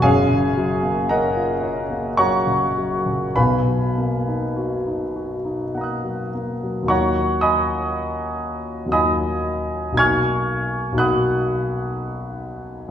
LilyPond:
<<
  \new Staff \with { instrumentName = "Grand piano" } { \time 3/4 \key ees \minor \tempo 4 = 56 << { <aes' des'' f'' aes''>4 <bes' ees'' ges'' bes''>4 <des'' ges'' bes'' des'''>4 | <b' f'' aes'' b''>2~ <b' f'' aes'' b''>8 r8 | <des'' ges'' bes'' des'''>8 <ees'' aes'' ces''' ees'''>4. <ees'' aes'' ces''' ees'''>4 | <aes'' des''' f''' aes'''>4 <fis'' b'' dis''' fis'''>2 | } \\ { r2. | r2 <fis'' ais'' dis''' fis'''>4 | <ees, ges bes ees' f'>2 <ees, ges bes ees' f'>4 | <b,, fis ais dis' fis'>4 <b,, fis ais dis' fis'>2 | } >> }
  \new Staff \with { instrumentName = "Grand piano" } { \clef bass \time 3/4 \key ees \minor <ges,, ges,>16 des16 ges16 bes16 des'16 f'16 des'16 bes16 ges16 des16 ges16 des16 | <b,, b,>16 fis16 ais16 dis'16 fis'16 dis'16 fis'16 dis'16 ais16 fis16 ais16 fis16 | r2. | r2. | }
>>